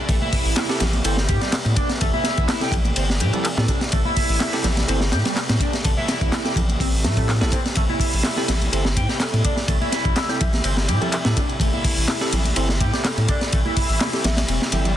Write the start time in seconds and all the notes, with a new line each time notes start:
Already playing: C3 G3 A3
0.09 A1 A3 B3, kick, closed hi-hat, ride
0.22 E4, high conga
0.33 kick, closed hi-hat, open hi-hat
0.46 A1, closed hi-hat
0.56 snare, clap, closed hi-hat, ride, high conga
0.69 C4 E4 G4 A4, snare, closed hi-hat
0.80 A1, snare, closed hi-hat, ride, low conga
0.93 closed hi-hat, high conga
1.04 G1 C4 E4 G4 A4, closed hi-hat, ride
1.17 snare
1.29 A2 G4, kick, closed hi-hat, ride, high conga
1.41 G3, snare, closed hi-hat
1.52 snare, clap, closed hi-hat, ride
1.65 A2, ride, high conga
1.76 D4, kick, closed hi-hat, ride
1.89 snare, closed hi-hat
2.01 A1 A3, kick, closed hi-hat, ride
2.14 E4, high conga
2.24 snare, closed hi-hat, ride
2.38 A1, kick, closed hi-hat
2.48 snare, clap, closed hi-hat, ride, high conga
2.61 C4 E4 G4 A4, snare, closed hi-hat
2.72 A1, kick, closed hi-hat, ride, low conga
2.85 closed hi-hat, high conga
2.96 G1 C4, closed hi-hat, ride
3.10 snare
3.20 A2 G4, closed hi-hat, ride, high conga, low conga
3.33 G3 C4 E4 G4 A4, closed hi-hat, low conga
3.45 clap, closed hi-hat, ride
3.57 A2 C4 E4 G4 A4, snare, high conga
3.68 D4, kick, closed hi-hat, ride
3.81 snare, closed hi-hat
3.92 A1 A3, kick, closed hi-hat, ride
4.05 E4, high conga
4.17 kick, closed hi-hat, open hi-hat
4.29 A1, closed hi-hat
4.40 snare, clap, closed hi-hat, ride, high conga
4.53 C4 E4 G4 A4, snare, closed hi-hat
4.64 A1, snare, closed hi-hat, ride, low conga
4.77 snare, closed hi-hat, high conga
4.88 G1 C4 E4 G4 A4, closed hi-hat, ride
5.01 snare
5.12 A2 G4, snare, closed hi-hat, ride, high conga
5.25 G3, snare, closed hi-hat, ride
5.36 snare, clap, closed hi-hat, ride
5.49 A2, snare, ride, high conga
5.60 D4, kick, closed hi-hat, ride
5.73 snare, closed hi-hat
5.84 A1 A3, kick, closed hi-hat, ride
5.97 E4, high conga
6.08 snare, closed hi-hat, ride
6.21 A1, kick, closed hi-hat
6.32 snare, clap, closed hi-hat, ride, high conga
6.45 C4 E4 G4 A4, snare, closed hi-hat
6.56 A1, kick, closed hi-hat, ride, low conga
6.69 closed hi-hat, high conga
6.80 A1 C4, kick, closed hi-hat, open hi-hat
7.04 A2 A3, snare, closed hi-hat, high conga, low conga
7.17 A3 C4 E4 G4 A4, kick, closed hi-hat, ride, low conga
7.29 snare, clap, closed hi-hat
7.41 A1 C4 E4 G4 A4, snare, closed hi-hat, high conga
7.52 C4, kick, closed hi-hat, ride
7.66 snare, closed hi-hat
7.75 A1 A3 E4, kick, closed hi-hat, ride
7.89 E4, high conga
8.00 kick, closed hi-hat, open hi-hat
8.14 A1, closed hi-hat
8.23 snare, clap, closed hi-hat, ride, high conga
8.37 C4 E4 G4 A4, snare, closed hi-hat
8.48 A1, snare, closed hi-hat, ride, low conga
8.62 closed hi-hat, high conga
8.72 G1 C4 E4 G4 A4, closed hi-hat, ride
8.85 snare
8.96 A2 G4, kick, closed hi-hat, ride, high conga
9.09 G3, snare, closed hi-hat
9.20 A4, snare, clap, closed hi-hat, ride
9.33 A2 A4, ride, high conga
9.44 D4 D5, kick, closed hi-hat, ride
9.57 D5, snare, closed hi-hat
9.68 A1 A3, kick, closed hi-hat, ride
9.81 E4, high conga
9.92 snare, closed hi-hat, ride
10.05 A1, kick, closed hi-hat
10.16 snare, clap, closed hi-hat, ride, high conga
10.29 C4 E4 G4 A4, snare, closed hi-hat
10.40 A1 E5, kick, closed hi-hat, ride, low conga
10.53 snare, closed hi-hat, high conga
10.64 G1 C4, closed hi-hat, ride
10.77 snare
10.88 A2 G4, closed hi-hat, ride, high conga, low conga
11.01 G3 C4 E4 G4 A4 E5, closed hi-hat, low conga
11.12 E5, clap, closed hi-hat, ride
11.25 A2 C4 E4 G4 A4, snare, high conga
11.37 D4, kick, closed hi-hat, ride
11.49 closed hi-hat
11.60 A1 A3, kick, closed hi-hat, ride
11.73 E4, high conga
11.84 kick, closed hi-hat, open hi-hat
11.97 A1, closed hi-hat
12.08 snare, clap, closed hi-hat, ride, high conga
12.21 C4 E4 G4 A4, snare, closed hi-hat
12.33 A1, closed hi-hat, ride, low conga
12.45 closed hi-hat, high conga
12.56 G1 C4 E4 G4 A4, closed hi-hat, ride
12.69 snare
12.81 A2 G4, kick, closed hi-hat, ride, high conga
12.93 G3, snare, closed hi-hat
13.04 A4, snare, clap, closed hi-hat, ride
13.18 A2 A4, ride, high conga
13.28 D4 D5, kick, closed hi-hat, ride
13.41 D5, snare, closed hi-hat
13.52 A1 A3, kick, closed hi-hat, ride
13.65 E4, high conga
13.77 kick, closed hi-hat, open hi-hat
13.89 A1, closed hi-hat
14.00 snare, clap, closed hi-hat, ride, high conga
14.13 C4 E4 G4 A4, snare, closed hi-hat
14.24 A1 E5, snare, closed hi-hat, ride, low conga
14.37 E5, snare, closed hi-hat, ride, high conga
14.48 E1 C4, closed hi-hat, ride
14.62 snare
14.72 G1 C4 E4 G4 A4 E5, closed hi-hat, ride, high conga, low conga
14.85 G3, closed hi-hat, low conga